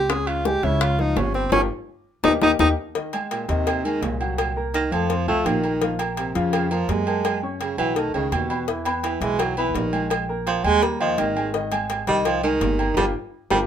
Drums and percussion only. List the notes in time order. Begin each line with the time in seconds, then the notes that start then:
0.10 high bongo, high timbale
0.27 high timbale
0.45 high bongo, low timbale
0.63 high bongo, high timbale
0.81 high bongo, high timbale
0.99 high bongo
1.17 high bongo, low bongo, high timbale, low timbale
1.34 high bongo
1.52 low bongo, high timbale
2.24 low bongo, high timbale
2.42 low bongo, high timbale
2.59 low bongo, high timbale
2.95 cowbell
3.13 cowbell, low agogo
3.31 cowbell, low timbale, low agogo
3.49 cowbell
3.67 cowbell, low agogo
3.85 low agogo
4.03 cowbell, low timbale
4.21 low agogo
4.38 cowbell, low agogo
4.74 cowbell, low timbale, low agogo
4.92 low agogo
5.10 cowbell
5.28 low agogo
5.46 cowbell, low timbale, low agogo
5.63 low agogo
5.82 cowbell
5.99 cowbell, low agogo
6.17 cowbell, low timbale, low agogo
6.35 cowbell
6.53 cowbell, low agogo
6.71 low agogo
6.89 cowbell, low timbale
7.07 low agogo
7.25 cowbell, low agogo
7.61 cowbell, low timbale, low agogo
7.78 low agogo
7.96 cowbell
8.14 low agogo
8.32 cowbell, low timbale, low agogo
8.50 low agogo
8.68 cowbell
8.85 cowbell, low agogo
9.03 cowbell, low timbale, low agogo
9.22 cowbell
9.39 cowbell, low agogo
9.57 low agogo
9.75 cowbell, low timbale
9.93 low agogo
10.10 cowbell, low agogo
10.47 cowbell, low timbale, low agogo
10.64 low agogo
10.83 cowbell
11.01 low agogo
11.18 cowbell, low timbale, low agogo
11.37 low agogo
11.54 cowbell
11.72 cowbell, low agogo
11.90 cowbell, low timbale, low agogo
12.07 cowbell
12.25 cowbell, low agogo
12.43 low agogo
12.61 cowbell, low timbale
12.79 low agogo
12.97 cowbell, high timbale
13.50 cowbell, high timbale